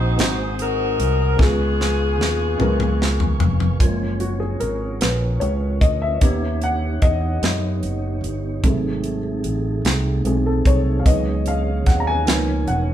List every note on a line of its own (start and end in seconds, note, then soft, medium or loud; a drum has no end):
0.00 0.15 A#1 medium
0.00 0.14 G#2 medium
0.00 0.16 G#3 medium
0.00 0.16 C4 medium
0.00 0.18 C4 medium
0.00 0.19 D#4 medium
0.00 0.56 D#4 medium
0.00 0.20 F#4 medium
0.00 0.55 F#4 medium
0.00 0.20 G#4 medium
0.00 0.19 C5 medium
0.00 1.37 C5 medium
0.00 1.37 F#5 medium
0.00 3.76 G#5 medium
0.00 1.37 D#6 medium
0.16 0.95 G#1 loud
0.16 1.16 G#3 medium
0.16 1.17 C4 medium
0.16 1.17 D#4 medium
0.16 1.18 F#4 medium
0.16 1.18 G#4 medium
0.16 0.57 C5 medium
0.16 snare loud
0.16 closed hi-hat medium
0.59 1.36 D#4 medium
0.59 1.37 F#4 medium
0.59 1.40 A#4 medium
0.59 closed hi-hat medium
1.00 1.36 C2 medium
1.00 closed hi-hat medium
1.37 2.20 C#2 medium
1.37 2.56 C#3 medium
1.37 2.37 G#3 medium
1.37 2.37 B3 medium
1.37 3.78 B3 medium
1.37 2.38 C#4 medium
1.37 2.38 F4 medium
1.37 2.39 G#4 medium
1.37 3.78 F5 medium
1.37 3.78 C#6 medium
1.37 kick medium
1.41 3.38 B3 medium
1.41 3.38 F4 medium
1.41 3.42 G#4 medium
1.41 snare soft
1.81 snare medium
2.20 2.57 D#2 medium
2.20 snare medium
2.58 3.36 C#2 medium
2.58 3.57 G#3 medium
2.58 3.58 B3 medium
2.58 3.58 C#4 medium
2.58 3.59 F4 medium
2.58 3.59 A#4 medium
2.58 mid tom medium
2.80 mid tom medium
3.02 snare medium
3.20 floor tom medium
3.40 3.77 F1 medium
3.40 floor tom loud
3.60 floor tom medium
3.79 4.57 F#1 medium
3.79 4.97 F3 soft
3.79 4.98 G#3 soft
3.79 4.98 A#3 medium
3.79 6.20 C#4 medium
3.79 6.20 F4 soft
3.79 6.20 C#5 medium
3.79 kick medium
3.79 closed hi-hat medium
4.20 4.39 F#4 medium
4.20 closed hi-hat soft
4.40 4.61 G#4 medium
4.60 4.99 G#1 medium
4.60 4.98 A#4 medium
4.60 closed hi-hat soft
5.01 5.39 A#1 medium
5.01 5.43 B4 medium
5.01 snare loud
5.01 closed hi-hat medium
5.40 5.79 C#2 medium
5.40 5.78 C#5 medium
5.40 closed hi-hat soft
5.81 6.19 D2 medium
5.81 6.02 D#5 medium
5.81 kick medium
5.81 closed hi-hat soft
6.02 6.64 E5 medium
6.21 6.98 D#2 medium
6.21 8.60 C#3 soft
6.21 8.61 B3 medium
6.21 8.60 B3 soft
6.21 11.02 D#4 medium
6.21 8.61 G4 medium
6.21 8.60 G4 soft
6.21 8.61 C#5 medium
6.21 kick medium
6.21 closed hi-hat medium
6.62 7.01 F#5 medium
6.62 closed hi-hat soft
7.02 7.40 E2 medium
7.02 7.79 D#5 medium
7.02 kick medium
7.02 closed hi-hat medium
7.43 7.80 F#2 medium
7.43 snare loud
7.43 closed hi-hat medium
7.83 8.21 F#1 medium
7.83 closed hi-hat soft
8.24 8.61 G1 medium
8.24 closed hi-hat medium
8.62 9.41 G#1 medium
8.62 9.17 C3 soft
8.62 9.18 F#3 soft
8.62 11.02 A3 medium
8.62 9.18 A3 medium
8.62 12.22 G#4 medium
8.62 11.03 A4 medium
8.62 kick medium
8.62 closed hi-hat medium
9.04 closed hi-hat soft
9.44 9.82 A1 medium
9.44 closed hi-hat soft
9.85 10.22 C2 medium
9.85 snare loud
9.85 closed hi-hat medium
10.25 10.62 B1 medium
10.25 10.61 F#3 soft
10.25 10.62 A3 soft
10.25 10.61 C4 soft
10.25 10.47 G#4 medium
10.25 closed hi-hat medium
10.46 10.67 A4 medium
10.65 11.02 C2 medium
10.65 11.00 C#5 medium
10.65 kick medium
10.65 closed hi-hat medium
10.99 11.06 F5 medium
11.05 11.82 C#2 medium
11.05 12.22 D#3 soft
11.05 12.23 F#3 soft
11.05 12.25 B3 medium
11.05 12.23 B3 medium
11.05 12.24 C#4 medium
11.05 12.24 C#5 medium
11.05 11.44 D#5 medium
11.05 kick medium
11.05 closed hi-hat medium
11.46 11.88 F5 medium
11.46 closed hi-hat medium
11.86 12.28 D#2 medium
11.86 12.00 F#5 medium
11.86 kick medium
11.86 snare soft
11.86 closed hi-hat soft
12.00 12.07 A#5 medium
12.07 12.69 G#5 medium
12.25 12.64 C#2 medium
12.25 12.94 B2 medium
12.25 12.94 D#3 soft
12.25 12.94 F3 soft
12.25 12.94 A#3 soft
12.25 12.94 B3 medium
12.25 12.94 C#4 medium
12.25 12.94 D#4 medium
12.25 12.94 A#4 medium
12.25 12.94 C#5 medium
12.25 snare loud
12.25 closed hi-hat medium
12.68 12.94 E1 medium
12.68 12.94 F#5 medium
12.68 closed hi-hat soft